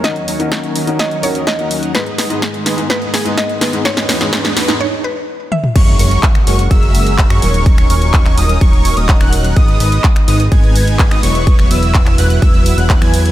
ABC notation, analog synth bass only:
X:1
M:4/4
L:1/16
Q:1/4=126
K:G#m
V:1 name="Analog synth bass" clef=bass
z16 | z16 | z16 | F,,,2 F,,,2 z2 F,,,2 F,,,4- F,,, F,, D,,,2- |
D,,,2 D,,,4 D,,,2 D,,,3 D,,,2 D,,,3 | G,,,2 G,,,2 z2 G,,,2 G,,,4- G,,, G,,, E,,,2- | E,,,2 E,,,4 E,,,2 E,,,3 E,,,2 E,,3 |]